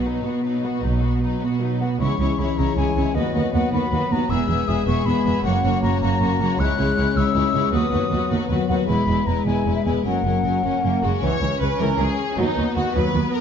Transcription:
Already playing: B2
0.04 F#3 D#4 B4
0.24 B2 B3 F#4
0.43 F#3 D#4 B4
0.64 B3 F#4
0.82 B1 B2 F#3 D#4 B4
1.02 B3 F#4
1.22 F#3 D#4 B4
1.42 B2 B3 F#4
1.61 F#3 D#4 B4
1.81 B3 F#4 F#5
1.99 C#2 C#3 E3 G#3 C#4 E4 C#5 C#6
2.19 C#2 C#3 G#3 E4 C#5
2.38 C#2 C#3 G#3 E4 C#5 B5
2.58 C#2 C#3 G#3 E4 C#5 A#5
2.77 C#2 C#3 G#3 E4 C#5 G#5
2.96 C#2 C#3 G#3 E4 C#5
3.14 D#2 F#3 B3 F#4 B4 D#5
3.34 D#2 B3 F#4 B4
3.52 D#2 B3 F#4 B4 F#5
3.72 D#2 B3 F#4 B4 B5
3.91 D#2 B3 F#4 B4
4.10 D#2 B3 F#4 B4 A#5
4.29 E1 E2 G#3 B3 G#4 E5 E6
4.48 E1 E2 B3 G#4 E5
4.68 E1 E2 B3 G#4 E5 D#6
4.87 E1 E2 B3 G#4 E5 C#6
5.06 E1 E2 B3 G#4 E5 B5
5.25 E1 E2 B3 G#4 E5
5.44 F#1 F#2 F#3 A#3 C#4 F#4 C#5 F#5
5.64 F#1 F#2 A#3 F#4 C#5
5.82 F#1 F#2 A#3 F#4 C#5 A#5
6.01 F#1 F#2 A#3 F#4 C#5 A#5
6.21 F#1 F#2 A#3 F#4 C#5
6.39 F#1 F#2 A#3 F#4 C#5
6.58 C#2 G#3 C#4 E4 C#5 F#6
6.78 C#2 G#3 E4 C#5
6.95 C#2 G#3 E4 C#5
7.15 C#2 G#3 E4 C#5 E6
7.34 C#2 G#3 E4 C#5
7.53 C#2 G#3 E4 C#5
7.72 D#2 F#3 B3 F#4 B4 D#6
7.91 D#2 F#3 F#4 B4
8.09 D#2 F#3 F#4 B4
8.29 D#2 F#3 F#4 B4
8.48 D#2 F#3 F#4 B4
8.69 D#2 F#3 F#4 B4 F#5
8.87 E1 E2 G#3 E4 B4 B5
9.07 E1 E2 G#3 E4 B4
9.26 E1 E2 G#3 E4 B4 A#5
9.46 E1 E2 G#3 E4 B4 G#5
9.66 E1 E2 G#3 E4 B4
9.76 E5
9.85 E1 E2 G#3 E4 B4 G#5
10.04 F#1 F#2 F#3 A#3 C#4 A#4 F#5
10.24 F#1 F#2 F#3 C#4 A#4
10.43 F#1 F#2 F#3 C#4 A#4
10.63 F#1 F#2 C#4 A#4
10.83 F#1 F#2 A#3 C#4 A#4
11.03 F#1 F#2 G#3 C#4 F#4 A#4
11.21 C#2 E3 C#4 C#5
11.41 C#2 E3
11.60 C#2 C#3 B4
11.80 C#2 E3 A#4
11.99 C#2 E3 G#4
12.37 D#2 F#3 B3 D#4
12.57 D#2 F#3
12.75 D#2 D#3 F#4
12.94 D#2 F#3 B4
13.14 D#2 F#3
13.33 A#4

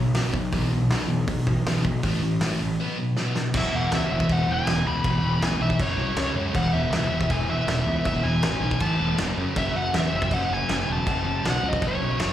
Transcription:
Already playing: B1 B2 F#3
0.14 B1 B2 F#3 B3, snare, open hi-hat
0.33 B1 B2 F#3, kick
0.53 B1 E2 B2 E3, kick, open hi-hat
0.71 B1 E2 B2
0.90 B1 E2 B2 E3, snare, open hi-hat
1.08 B1 E2 B2
1.27 B1 E2 B2, kick, open hi-hat
1.47 B1 E2 B2, kick
1.66 B1 E2 B2 E3, snare, open hi-hat
1.85 B1 E2 B2, kick
2.03 A1 A2 E3 A3, kick, open hi-hat
2.23 A1 A2 E3
2.41 A1 A2 E3 A3, snare, open hi-hat
2.60 A1 A2 E3
2.80 B2 F#3 B3
2.98 B2 F#3
3.17 B2 F#3 B3, snare
3.35 B2 F#3, snare
3.54 E1 E2 B2 E3 E5, kick, crash
3.72 E1 E2 B2 E3 F#5
3.92 C#2 E2 B2 E3 E5, snare, crash
4.11 E1 E2 B2 E3 E5
4.20 kick
4.29 E1 E2 B2 E3 F#5, kick, crash
4.47 E1 E2 B2 E3
4.52 G#5
4.66 E1 E2 B2 E3, snare, crash
4.86 C#2 E2 B2 E3 B5
5.04 E1 E2 B2 E3, kick, crash
5.22 E1 E2 B2 E3
5.41 A1 E2 B2 E3 G#5, snare, crash
5.60 B1 E2 B2 E3 E5
5.70 kick
5.79 F#1 F#2 C#3 F#3 C#5, kick, crash
5.97 C2 F#2 C#3 F#3
6.16 C#2 C#3 G#3 C#4, snare, crash
6.35 F#2 C#3 G#3 C#4
6.54 E1 E2 B2 E3 F#5, kick, crash
6.73 E1 E2 B2 E3 E5
6.91 C#2 E2 B2 E3, snare, crash
7.10 E1 E2 B2 E3
7.21 kick
7.30 E1 E2 B2 E3 G#5, kick, crash
7.47 E1 E2 B2 E3 E5
7.67 E1 E2 B2 E3, snare, crash
7.86 C#2 E2 B2 E3
8.05 E1 E2 B2 E3 E5, kick, crash
8.23 E1 E2 B2 E3 G#5
8.42 A1 E2 B2 E3 G#5, snare, crash
8.61 B1 E2 B2 E3
8.71 kick
8.80 A1 A2 E3 A3 A5, kick, crash
8.98 E1 A2 E3 A3
9.18 F#1 F#2 C#3 F#3, snare, crash
9.36 F#2 C#3 F#3
9.56 F#1 F#2 C#3 F#3 E5, kick, crash
9.74 F#1 F#2 C#3 F#3 F#5
9.94 E2 F#2 C#3 F#3 E5, snare, crash
10.12 F#1 F#2 C#3 F#3 E5
10.22 kick
10.31 F#1 F#2 C#3 F#3 F#5, kick, crash
10.50 F#1 F#2 C#3 F#3 G#5
10.69 F#1 F#2 C#3 F#3, snare, crash
10.87 E1 F#2 C#3 F#3
10.93 A5
11.06 F#1 F#2 C#3 F#3, kick, crash
11.25 F#1 F#2 C#3 F#3
11.44 B1 F#2 C#3 F#3, snare, crash
11.49 F#5
11.63 C#2 F#2 C#3 F#3
11.69 D#5
11.73 kick
11.82 F#1 F#2 C#3 F#3, kick, crash
11.87 C#5
12.00 B1 F#2 C#3 F#3
12.19 F#1 F#2 C#3 F#3, snare, crash

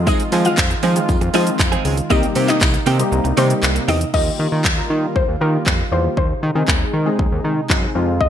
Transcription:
Already playing: F2 D#3 F3 G#3 C4 D#4 F4
0.07 G#3 C4 D#4 G#4 D#5, kick, tambourine, shaker
0.20 closed hi-hat, shaker
0.32 F3 G#3 C4 D#4 G#4, open hi-hat, tambourine, shaker
0.45 G#3 C4 D#4 F4 G#4 F5, closed hi-hat, shaker
0.57 F2, kick, clap, tambourine, shaker
0.70 muted clean electric guitar stroke, closed hi-hat, shaker
0.83 F3 G#3 C4 D#4 G#4, open hi-hat, tambourine, shaker
0.96 F3 G#3 C4 D#4 F4, muted clean electric guitar stroke, closed hi-hat, shaker
1.09 F2, muted clean electric guitar stroke, kick, tambourine, shaker
1.21 F2, muted clean electric guitar stroke, closed hi-hat, shaker
1.34 F3 G#3 C4 D#4 F4 G#4 D#5, open hi-hat, tambourine, shaker
1.47 muted clean electric guitar stroke, closed hi-hat, shaker
1.59 F2, muted clean electric guitar stroke, kick, clap, tambourine, shaker
1.72 G#3 C4 D#4 G#4, closed hi-hat, shaker
1.85 C#2 G#3 C4 D#4 G#4, open hi-hat, shaker
1.97 muted clean electric guitar stroke, closed hi-hat, shaker
2.10 C2 C3 D#3 G3 A#3 C4 D#4 G4 D#5, kick, tambourine, shaker
2.23 closed hi-hat, shaker
2.35 C3 D#3 A#3 C4 G4, open hi-hat, tambourine, shaker
2.48 D#3 A#3 C4 D#4 G4 D#5, clap, closed hi-hat, shaker
2.61 C2, kick, clap, tambourine, shaker
2.74 muted clean electric guitar stroke, closed hi-hat, shaker
2.86 C3 D#3 A#3 C4 G4, open hi-hat, tambourine, shaker
2.99 G3 A#3 C4 D#4 G4, muted clean electric guitar stroke, closed hi-hat, shaker
3.12 C2, muted clean electric guitar stroke, shaker
3.24 C2, muted clean electric guitar stroke, closed hi-hat, shaker
3.37 C3 D#3 G3 A#3 C4 D#4 G4 C5, open hi-hat, tambourine, shaker
3.50 muted clean electric guitar stroke, closed hi-hat, shaker
3.63 C2, clap, tambourine, shaker
3.75 muted clean electric guitar stroke, closed hi-hat, shaker
3.88 E2 D#3 A#3 C4 D#4 G4 D#5, open hi-hat, tambourine, shaker
4.01 muted clean electric guitar stroke, closed hi-hat, shaker
4.14 D#2 D#3 G3 A#3 D#4 F4 G4 D#5, kick, crash
4.39 D#3
4.52 D#3
4.65 D#2, kick, clap
4.77 A#3 D#4 F4 A#4
4.90 D#3
5.16 D#2 C5, kick
5.28 D#2
5.41 D#3 A#3 D#4 F4 G4 A#4
5.66 F2, kick, clap
5.91 E2 A#3 D#4 F4 G4 C5
6.17 D#2 C3 G#3 D#4 C5, kick
6.43 D#3
6.55 D#3 G#3 C4 D#4 G#4
6.68 D#2, kick, clap
6.93 D#3
7.06 G#3 C4 D#4 G#4
7.19 D#2, kick
7.32 D#2
7.44 D#3
7.70 F#2 G#3 C4 D#4 G#4, kick, clap
7.95 F2 D#3 G#3 C4 D#4 F4
8.21 D#5, kick

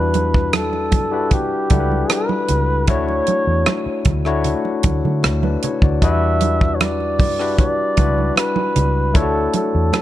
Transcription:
Already playing: E2 G3 D4 E4 F#4 B4
0.14 closed hi-hat, high conga
0.34 kick
0.53 A4, cross-stick, closed hi-hat, muted conga, high conga
0.73 muted conga
0.92 F#2, kick, closed hi-hat, high conga, low conga
1.11 D4 E4 F#4 G4 B4
1.31 G4, kick, closed hi-hat, muted conga, low conga
1.70 C#2 G3 D4 E4 A4 F#5, kick, closed hi-hat, high conga
1.80 B4
1.91 high conga
2.10 B4, cross-stick, closed hi-hat, muted conga
2.29 high conga
2.49 C#2, closed hi-hat, low conga
2.88 D2 A3 D4 E4 F#4 C#5, kick, closed hi-hat, muted conga
3.08 muted conga
3.27 closed hi-hat, high conga
3.47 E2
3.66 cross-stick, closed hi-hat, muted conga, high conga
3.86 muted fingered electric bass stroke
4.05 D2, kick, closed hi-hat, high conga, low conga
4.25 A3 D4 E4 F#4 C#5, cross-stick
4.44 closed hi-hat, low conga
4.65 muted conga
4.83 D2, kick, closed hi-hat, high conga
5.05 D3, high conga
5.23 D2, cross-stick, closed hi-hat, muted conga
5.43 D4 B4, high conga
5.63 E4 C#5, closed hi-hat, low conga
5.82 D2 F#4 D5, kick
6.02 E2 G3 D4 E4 F#4 B4 E5, kick, closed hi-hat, muted conga
6.41 closed hi-hat, high conga
6.61 kick
6.75 C#5
6.81 D5, cross-stick, closed hi-hat, muted conga, high conga
7.00 muted conga
7.19 F#2, kick, open hi-hat, high conga, low conga
7.39 D4 E4 F#4 G4 B4, cross-stick
7.58 D5, kick, closed hi-hat, low conga
7.97 C#2 G3 D4 E4 F#4 B4, kick, closed hi-hat, high conga
8.18 high conga
8.36 B4, cross-stick, closed hi-hat, muted conga
8.56 muted conga, high conga
8.76 C#2, closed hi-hat, low conga
9.14 D2 A3 D4 E4 F4 A4 C#5, kick, closed hi-hat, muted conga
9.22 F#4
9.54 A4, closed hi-hat, high conga
9.75 E2
9.93 cross-stick, closed hi-hat, muted conga, high conga

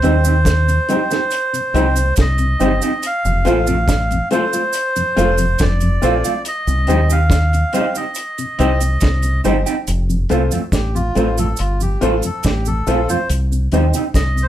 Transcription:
Already playing: C5
0.02 D#2 G3 C4 D#4 G4 C5, closed hi-hat, cabasa
0.25 C3 C4 D#4 G4, cabasa
0.45 kick, snare, closed hi-hat, cabasa
0.68 C3, closed hi-hat, cabasa
0.88 G3 C4 D#4 G4 C5, closed hi-hat, cabasa
1.10 C4 D#4 G4, snare, cabasa
1.31 closed hi-hat, cabasa
1.53 C3, closed hi-hat, cabasa
1.74 C2 G3 C4 D#4 G4 C5, closed hi-hat, cabasa
1.96 C3, closed hi-hat, cabasa
2.16 C2, kick, snare, closed hi-hat, cabasa
2.21 D#5
2.38 C3, closed hi-hat, cabasa
2.59 G1 G3 C4 D#4 G4 C5, closed hi-hat, cabasa
2.82 C4 D#4 G4, closed hi-hat, cabasa
3.03 F5, closed hi-hat, cabasa
3.25 F1 F2 C3, cabasa
3.45 A1 A3 C4 F4 A4 C5 F5, closed hi-hat, cabasa
3.67 F2 C3 A3 C4 F4, cabasa
3.88 kick, snare, closed hi-hat, cabasa
4.11 F2 C3, closed hi-hat, cabasa
4.31 A3 C4 F4 A4 C5, closed hi-hat, cabasa
4.53 A3 C4 F4, cabasa
4.73 closed hi-hat, cabasa
4.96 F2 C3, closed hi-hat, cabasa
5.16 F1 A3 C4 F4 A4 C5, closed hi-hat, cabasa
5.38 F2 C3, closed hi-hat, cabasa
5.59 F1 D5, kick, snare, closed hi-hat, cabasa
5.80 F2 C3, closed hi-hat, cabasa
6.02 A#1 A3 C4 F4 A4 C5, closed hi-hat, cabasa
6.24 A3 C4 F4, closed hi-hat, cabasa
6.45 D#5, closed hi-hat, cabasa
6.67 C2 C3, cabasa
6.87 D#2 G3 C4 D#4 G4 C5, closed hi-hat, cabasa
7.10 C3 C4 D#4 G4 F5, cabasa
7.30 kick, snare, closed hi-hat, cabasa
7.53 C3, closed hi-hat, cabasa
7.73 G3 C4 D#4 G4 C5 F5, closed hi-hat, cabasa
7.95 C4 D#4 G4 D#5, cabasa
8.15 closed hi-hat, cabasa
8.38 C3, closed hi-hat, cabasa
8.59 C2 G3 C4 D#4 G4 C5, closed hi-hat, cabasa
8.81 C3, closed hi-hat, cabasa
9.01 C2, kick, snare, closed hi-hat, cabasa
9.22 C3, closed hi-hat, cabasa
9.44 G1 G3 C4 D#4 G4 C5, closed hi-hat, cabasa
9.66 C4 D#4 G4, closed hi-hat, cabasa
9.87 F1, closed hi-hat, cabasa
10.09 F2 C3, cabasa
10.29 C2 A3 C4 F4 A4 C5, closed hi-hat, cabasa
10.51 F2 C3 A3 C4 F4, closed hi-hat, cabasa
10.72 A1 G4, kick, snare, closed hi-hat, cabasa
10.95 F2 C3 F4, cabasa
11.15 A1 A3 C4 F4 A4 C5, closed hi-hat, cabasa
11.38 F2 C3 A3 C4 F4 A4, closed hi-hat, cabasa
11.57 G1 F4, closed hi-hat, cabasa
11.80 F2 C3 G4, cabasa
12.01 A1 A3 C4 F4 A4 C5, closed hi-hat, cabasa
12.23 F2 C3 A4, closed hi-hat, cabasa
12.43 A1 G4, kick, snare, closed hi-hat, cabasa
12.65 F2 C3 A4, cabasa
12.87 A#1 A3 C4 F4 A4 C5, closed hi-hat, cabasa
13.09 F2 C3 A3 C4 F4 C5, closed hi-hat, cabasa
13.30 C2, closed hi-hat, cabasa
13.52 C3, cabasa
13.72 D#2 G3 C4 D#4 G4 C5, closed hi-hat, cabasa
13.94 C3 C4 D#4 G4, closed hi-hat, cabasa
14.14 C2 D#5, kick, snare, closed hi-hat, cabasa
14.36 C3, cabasa
14.43 C5

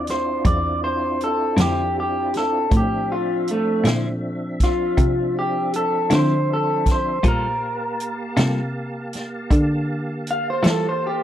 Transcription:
Already playing: D#2 C4 D4 E4 F4
0.07 C5, snare, closed hi-hat
0.45 E2 D5, kick, closed hi-hat
0.84 C5
1.21 A4, closed hi-hat
1.57 F2 D3 F3 C4 E4, snare, closed hi-hat
1.61 G4
2.00 G4
2.34 A4, snare, closed hi-hat
2.69 A2 F3 C4 D4 E5, kick, closed hi-hat
2.77 G4
3.12 F4
3.48 A3, closed hi-hat
3.84 A#2 D3 F3 C4 E4, snare, closed hi-hat
4.60 F4, kick, snare, closed hi-hat
4.97 C3, kick, closed hi-hat
5.39 G4
5.73 A4, closed hi-hat
6.10 D3 F3 C4 E4, snare, closed hi-hat
6.15 C5
6.53 A4
6.86 kick, snare, closed hi-hat
6.92 C5
7.23 A#2 G3 A#3 F4 G4 A4 F5 A5, kick, closed hi-hat
7.28 A#4
8.00 closed hi-hat
8.37 C3 G3 A#3 F4 A4, snare, closed hi-hat
9.13 snare, closed hi-hat
9.50 D3, kick, closed hi-hat
10.27 F5, closed hi-hat
10.50 C5
10.63 E3 G3 A#3 F4 A4, snare, closed hi-hat
10.70 A4
10.89 C5
11.07 G4

